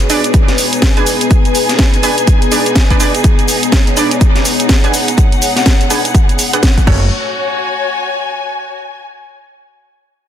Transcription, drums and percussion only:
0.00 closed hi-hat, cabasa
0.10 open hi-hat, cabasa
0.24 closed hi-hat, cabasa
0.34 kick, closed hi-hat, cabasa
0.48 snare, closed hi-hat, cabasa
0.58 open hi-hat, cabasa
0.73 closed hi-hat, cabasa
0.82 kick, snare, closed hi-hat, cabasa
0.97 closed hi-hat, cabasa
1.06 open hi-hat, cabasa
1.21 closed hi-hat, cabasa
1.31 kick, closed hi-hat, cabasa
1.45 closed hi-hat, cabasa
1.55 open hi-hat, cabasa
1.69 snare, closed hi-hat, cabasa
1.79 kick, snare, closed hi-hat, cabasa
1.94 closed hi-hat, cabasa
2.03 open hi-hat, cabasa
2.18 closed hi-hat, cabasa
2.27 kick, closed hi-hat, cabasa
2.42 closed hi-hat, cabasa
2.52 open hi-hat, cabasa
2.66 closed hi-hat, cabasa
2.75 kick, snare, closed hi-hat, cabasa
2.90 kick, closed hi-hat, cabasa
3.00 open hi-hat, cabasa
3.15 closed hi-hat, cabasa
3.24 kick, closed hi-hat, cabasa
3.39 closed hi-hat, cabasa
3.48 open hi-hat, cabasa
3.63 closed hi-hat, cabasa
3.72 kick, snare, closed hi-hat, cabasa
3.87 closed hi-hat, cabasa
3.97 open hi-hat, cabasa
4.11 closed hi-hat, cabasa
4.21 kick, closed hi-hat, cabasa
4.35 snare, closed hi-hat, cabasa
4.45 open hi-hat, cabasa
4.60 closed hi-hat, cabasa
4.69 kick, snare, closed hi-hat, cabasa
4.84 closed hi-hat, cabasa
4.94 open hi-hat, cabasa
5.08 closed hi-hat, cabasa
5.18 kick, closed hi-hat, cabasa
5.32 closed hi-hat, cabasa
5.42 open hi-hat, cabasa
5.56 snare, closed hi-hat, cabasa
5.66 kick, snare, closed hi-hat, cabasa
5.81 closed hi-hat, cabasa
5.90 open hi-hat, cabasa
6.05 closed hi-hat, cabasa
6.15 kick, closed hi-hat, cabasa
6.29 closed hi-hat, cabasa
6.39 open hi-hat, cabasa
6.53 closed hi-hat, cabasa
6.63 kick, snare, closed hi-hat, cabasa
6.78 kick, closed hi-hat, cabasa
6.87 kick, crash

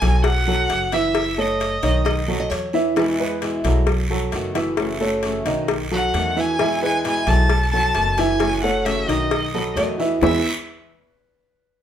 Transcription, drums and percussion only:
0.02 cowbell, short guiro
0.24 cowbell, long guiro
0.70 cowbell, short guiro
0.92 cowbell, short guiro
1.15 cowbell, long guiro
1.60 cowbell, short guiro
1.83 cowbell, short guiro
2.06 cowbell, long guiro
2.51 cowbell, short guiro
2.73 short guiro
2.96 cowbell, long guiro
3.42 cowbell, short guiro
3.64 cowbell, short guiro
3.87 cowbell, long guiro
4.32 cowbell, short guiro
4.55 cowbell, short guiro
4.77 cowbell, long guiro
5.23 cowbell, short guiro
5.46 cowbell, short guiro
5.68 cowbell, long guiro
6.14 cowbell, short guiro
6.37 short guiro
6.59 cowbell, long guiro
7.05 cowbell, short guiro
7.27 cowbell, short guiro
7.50 cowbell, long guiro
7.94 cowbell, short guiro
8.17 cowbell, short guiro
8.40 cowbell, long guiro
8.86 cowbell, short guiro
9.09 cowbell, short guiro
9.31 cowbell, long guiro
9.77 cowbell, short guiro
10.00 short guiro
10.21 low bongo, long guiro

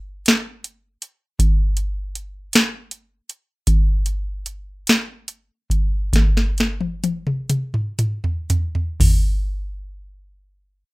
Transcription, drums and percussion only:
0.26 snare, closed hi-hat
0.64 closed hi-hat
1.02 closed hi-hat
1.39 kick, closed hi-hat
1.77 closed hi-hat
2.15 closed hi-hat
2.53 snare, closed hi-hat
2.91 closed hi-hat
3.30 closed hi-hat
3.67 kick, closed hi-hat
4.06 closed hi-hat
4.46 closed hi-hat
4.87 snare, closed hi-hat
5.28 closed hi-hat
5.70 kick, closed hi-hat
6.13 kick, snare, closed hi-hat
6.37 snare
6.58 snare, closed hi-hat
6.81 high tom
7.04 closed hi-hat, high tom
7.27 mid tom
7.50 closed hi-hat, mid tom
7.74 mid tom
7.99 closed hi-hat, mid tom
8.24 floor tom
8.50 closed hi-hat, floor tom
8.75 floor tom
9.00 kick, floor tom, open hi-hat

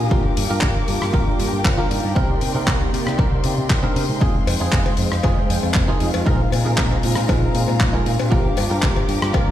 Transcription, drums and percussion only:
0.11 kick
0.37 open hi-hat
0.61 kick, clap
0.88 open hi-hat
1.02 cross-stick
1.14 kick
1.40 open hi-hat
1.65 kick, clap
1.91 open hi-hat
2.16 kick
2.41 open hi-hat
2.67 kick, clap
2.94 open hi-hat
3.07 cross-stick
3.19 kick
3.44 open hi-hat
3.70 kick, clap
3.96 open hi-hat
4.21 kick
4.47 open hi-hat, cowbell
4.72 kick, clap
4.86 cowbell
4.97 open hi-hat
5.12 cross-stick
5.23 kick, cowbell
5.50 open hi-hat
5.63 cowbell
5.74 kick, clap
6.00 open hi-hat
6.14 cowbell
6.26 kick
6.52 open hi-hat, cowbell
6.78 kick, clap
6.91 cowbell
7.03 open hi-hat
7.15 cross-stick
7.29 kick, cowbell
7.55 open hi-hat
7.68 cowbell
7.80 kick, clap
8.06 open hi-hat
8.20 cowbell
8.32 kick
8.57 open hi-hat, cowbell
8.82 kick, clap
8.96 cowbell
9.09 open hi-hat
9.22 cross-stick
9.34 kick, cowbell

